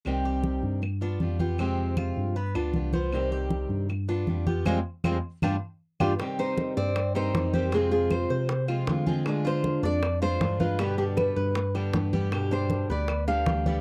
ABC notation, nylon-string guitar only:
X:1
M:4/4
L:1/8
Q:1/4=156
K:Cm
V:1 name="Nylon-string guitar"
z8 | z8 | z8 | z8 |
z c2 d2 c2 G | A A c4- c z | z c2 d2 c2 F | G G =B4- B z |
z c2 d2 f3 |]